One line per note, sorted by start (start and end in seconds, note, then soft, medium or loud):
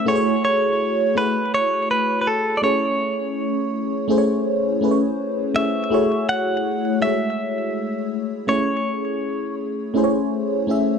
0.06 0.91 A3 medium
0.06 0.91 E4 medium
0.06 0.92 F#4 medium
0.06 0.92 G#4 medium
0.06 0.16 C5 medium
0.06 0.43 C#5 loud
0.16 0.96 C#5 loud
0.45 1.17 C#5 medium
1.15 2.27 A3 medium
1.15 2.27 E4 medium
1.15 2.28 F#4 medium
1.15 2.28 G#4 medium
1.15 1.54 B4 medium
1.15 2.29 C#5 medium
1.54 1.90 C#5 loud
1.91 2.20 B4 medium
2.21 2.27 B4 medium
2.27 2.58 A4 medium
2.57 2.63 D5 medium
2.62 3.81 A3 medium
2.62 3.81 C#4 medium
2.62 3.82 E4 medium
2.62 3.82 G#4 medium
2.62 4.06 C#5 medium
2.62 3.82 C#5 medium
4.08 4.67 A3 medium
4.08 4.67 C#4 medium
4.08 4.68 E4 medium
4.08 4.68 G#4 medium
4.08 4.18 C5 medium
4.18 4.72 C#5 medium
4.81 5.40 A3 medium
4.81 5.40 C#4 medium
4.81 5.41 E4 medium
4.81 5.41 G#4 medium
4.81 4.91 B4 medium
4.91 5.45 C#5 medium
5.54 5.84 A3 medium
5.54 5.84 C#4 medium
5.54 5.85 E4 medium
5.54 5.85 G#4 medium
5.54 5.86 C#5 medium
5.54 6.29 E5 medium
5.90 6.76 A3 medium
5.90 6.76 E4 medium
5.90 6.77 F#4 medium
5.90 6.77 G#4 medium
5.90 6.78 C#5 loud
6.29 6.98 F#5 loud
7.01 7.09 G#3 medium
7.01 8.12 E4 medium
7.01 8.13 F#4 medium
7.01 8.13 G#4 medium
7.01 8.14 C#5 medium
7.01 8.48 E5 medium
7.07 8.15 A3 medium
8.47 9.66 A3 medium
8.47 9.66 C#4 medium
8.47 9.67 E4 medium
8.47 9.67 G#4 medium
8.47 9.54 C#5 medium
8.47 9.68 C#5 medium
9.94 10.52 A3 medium
9.94 10.53 C#4 medium
9.94 10.53 E4 medium
9.94 10.54 G#4 medium
9.94 10.04 C5 medium
10.04 10.57 C#5 medium
10.67 10.99 A3 medium
10.67 10.99 C#4 medium
10.67 10.99 E4 medium
10.67 10.99 G#4 medium
10.67 10.99 E5 medium